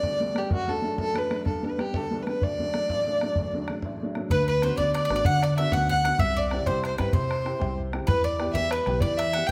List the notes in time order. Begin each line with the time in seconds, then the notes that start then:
Already playing: G3 A3 B3 D5
0.03 D2, bodhran
0.20 G3 A3 B3
0.35 G3 A3 B3 G4, bodhran
0.50 F#2 F#4, bodhran
0.67 F#3 A3 D4 A4, bodhran
0.82 F#3 A3 D4
0.98 F#2 A4, bodhran
1.14 F#3 A3 D4 B4, bodhran
1.31 F#3 A3 D4, bodhran
1.45 G2 A4, bodhran
1.55 bodhran
1.63 G3 B3 D4 B4, bodhran
1.78 G3 B3 D4 G4, bodhran
1.94 D2 A4, bodhran
2.11 G3 B3 D4
2.22 B4
2.27 G3 B3 D4 B4, bodhran
2.42 D2 D5, bodhran
2.59 F#3 A3 D4, bodhran
2.74 F#3 A3 D4, bodhran
2.89 A1, bodhran
3.07 F#3 A3 D4
3.21 F#3 A3 D4, bodhran
3.36 D2, bodhran
3.44 bodhran
3.52 F#3 A3 D4, bodhran
3.68 F#3 A3 D4, bodhran
3.82 A1, bodhran
4.03 F#3 A3 D4
4.15 F#3 A3 D4, bodhran
4.30 D2 D3 B4, bodhran
4.48 B4, bodhran
4.62 B3 D4 F#4 C5, bodhran
4.78 D2 B3 D4 F#4 D5, bodhran
4.94 D5, bodhran
5.05 D5
5.10 A1 B3 D4 F#4, bodhran
5.16 D5
5.25 D3 F#5, bodhran
5.43 D5, bodhran
5.57 B3 D4 F#4 E5, bodhran
5.72 D2 B3 D4 F#4 F#5, bodhran
5.89 F#5, bodhran
6.05 B3 D4 F#4 F#5, bodhran
6.19 C2 C3 E5, bodhran
6.37 D5, bodhran
6.51 C4 E4 G4, bodhran
6.66 C2 C4 E4 G4 C5, bodhran
6.84 C5, bodhran
6.98 G2 C4 E4 G4 B4, bodhran
7.13 C3 C5, bodhran
7.31 bodhran
7.45 C4 E4 G4, bodhran
7.59 C2 C4 E4 G4, bodhran
7.79 bodhran
7.93 C4 E4 G4, bodhran
8.06 E2 E3 B4, bodhran
8.24 D5, bodhran
8.39 B3 E4 G4, bodhran
8.53 E2 B3 E4 G4 E5, bodhran
8.71 B4, bodhran
8.86 B1 B3 E4 G4, bodhran
9.01 E3 D5, bodhran
9.18 E5, bodhran
9.33 B3 E4 G4 F#5, bodhran
9.47 G5